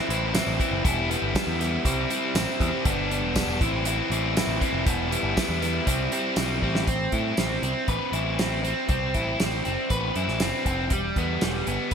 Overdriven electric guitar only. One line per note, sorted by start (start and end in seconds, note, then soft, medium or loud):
0.09 0.33 E3 medium
0.09 0.33 C4 medium
0.09 0.34 E4 medium
0.34 0.59 E3 medium
0.34 0.59 C4 medium
0.34 0.60 E4 medium
0.59 0.84 E3 medium
0.59 0.83 C4 medium
0.59 0.85 E4 medium
0.84 1.08 G3 medium
0.84 1.09 B3 loud
0.84 1.10 E4 loud
1.10 1.33 G3 medium
1.10 1.34 B3 medium
1.10 1.35 E4 medium
1.34 1.58 G3 medium
1.34 1.59 B3 medium
1.34 1.60 E4 medium
1.60 1.83 G3 medium
1.60 1.84 B3 medium
1.60 1.86 E4 medium
1.85 2.09 G3 medium
1.85 2.09 C4 loud
1.85 2.11 E4 loud
2.10 2.34 G3 medium
2.10 2.35 C4 medium
2.10 2.36 E4 medium
2.35 2.59 G3 medium
2.35 2.59 C4 medium
2.35 2.61 E4 medium
2.60 2.84 G3 medium
2.60 2.84 C4 medium
2.60 2.86 E4 loud
2.85 3.09 G3 medium
2.85 3.10 B3 loud
2.85 3.10 D4 loud
3.10 3.34 G3 medium
3.10 3.34 B3 medium
3.10 3.35 D4 loud
3.35 3.59 G3 medium
3.35 3.59 B3 medium
3.35 3.60 D4 medium
3.61 3.86 E3 medium
3.61 3.85 C4 loud
3.61 3.86 E4 loud
3.86 4.10 E3 loud
3.86 4.10 C4 medium
3.86 4.12 E4 loud
4.11 4.35 E3 medium
4.11 4.36 C4 medium
4.11 4.37 E4 medium
4.36 4.60 E3 medium
4.36 4.60 C4 medium
4.36 4.61 E4 medium
4.61 4.85 E3 medium
4.61 4.85 C4 medium
4.61 4.86 E4 loud
4.86 5.10 G3 medium
4.86 5.10 B3 loud
4.86 5.11 E4 loud
5.11 5.36 G3 medium
5.11 5.36 B3 medium
5.11 5.37 E4 loud
5.37 5.60 G3 medium
5.37 5.61 B3 medium
5.37 5.61 E4 medium
5.62 5.85 G3 medium
5.62 5.86 B3 medium
5.62 5.86 E4 medium
5.86 6.11 G3 medium
5.86 6.12 C4 medium
5.86 6.12 E4 loud
6.12 6.36 G3 medium
6.12 6.36 C4 medium
6.12 6.37 E4 medium
6.37 6.61 G3 medium
6.37 6.62 C4 medium
6.37 6.62 E4 medium
6.62 6.86 G3 medium
6.62 6.86 C4 medium
6.62 6.87 E4 medium
6.88 7.36 C4 medium
7.13 8.13 E4 medium
7.38 7.62 C4 medium
7.63 8.37 C4 medium
7.88 9.43 B4 medium
8.13 9.14 E4 medium
8.38 8.62 C4 medium
8.63 8.88 C4 medium
8.89 9.39 C4 medium
9.14 10.15 E4 medium
9.40 9.63 C4 medium
9.65 10.40 C4 medium
9.91 10.91 B4 medium
10.16 10.92 E4 medium
10.41 10.66 C4 medium
10.67 10.92 C4 medium
10.93 11.41 G3 medium
11.18 11.66 B3 medium
11.42 11.94 G3 medium
11.67 11.94 B3 medium